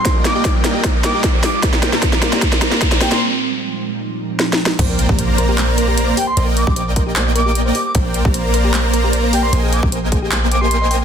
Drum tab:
CC |------------------------------------------------|------------------------------------------------|------------------------------------------------|x-----------------------------------------------|
HH |x-----x-----x-----x-----x-----x-----x-----o-----|x-----x-----x-----x-----x-----x-----x-----o-----|------------------------------------------------|x-----x-----x-----x-----x-----x-----x-----o-----|
CP |------------------------------------------------|------------------------------------------------|------------------------------------------------|------------------------x-----------------------|
SD |o-----o-----o-----o-----o-----o-----o-----o-----|o--o--o--o--o--o--o--o--o--o--o--o--o--o--o--o--|------------------------------------o---o---o---|------------------------------------------------|
BD |o-----------o-----------o-----------o-----------|o-----------o-----------o-----------o-----------|------------------------------------------------|o--------o--------------------------------------|

CC |------------------------------------------------|------------------------------------------------|------------------------------------------------|
HH |x-----x-----x-----x-----x-----x-----x-----o-----|x-----x-----x-----x-----x-----x-----x-----o-----|x-----x-----x-----x-----x-----x-----x-----o-----|
CP |------------------------x-----------------------|------------------------x-----------------------|------------------------x-----------------------|
SD |------------------------------------------------|------------------------------------------------|------------------------------------------------|
BD |---------o--------o-----------------------------|o--------o--------------------------------------|---------o--------o-----------------------------|